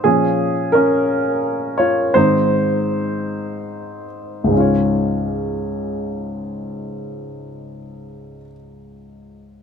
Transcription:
X:1
M:6/8
L:1/8
Q:3/8=47
K:Db
V:1 name="Grand piano"
A2 [DB]2 z [Fd] | [Ec]4- [Ec] z | z6 | z6 |]
V:2 name="Grand piano" clef=bass
[B,,F,D] z4 z | [A,,E,C] z4 z | [D,,A,,A,DFd]6- | [D,,A,,A,DFd]6 |]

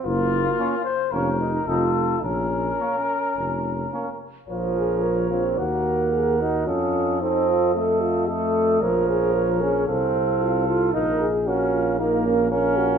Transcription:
X:1
M:4/4
L:1/8
Q:1/4=112
K:Bbm
V:1 name="Cornet"
F3 c B2 =A2 | B6- B z | d4 g4 | e2 e2 e2 e2 |
d4 f4 | f z f2 f2 f2 |]
V:2 name="Trumpet"
z2 D2 D2 E2 | z2 D2 z2 D2 | B4 B4 | =A2 A2 A2 A2 |
B4 =A4 | B z B2 B2 B2 |]
V:3 name="French horn"
z2 B,2 B,2 C2 | z2 B,2 z2 B,2 | F A B F G2 A G | F2 E F =A F A2 |
B A B A =A2 F A | B A G F E D B G |]
V:4 name="Trombone"
B,3 z D E F2 | D6- D z | F,3 C B,3 E | D2 C2 =A,2 A,2 |
F,3 D C3 F | E z D2 B,2 D2 |]
V:5 name="Bass trombone" clef=bass
G,,,2 z2 F,,,2 F,,,2 | B,,,2 z2 F,,,2 z2 | B,,,4 E,,4 | F,,8 |
B,,,4 C,,4 | B,,,8 |]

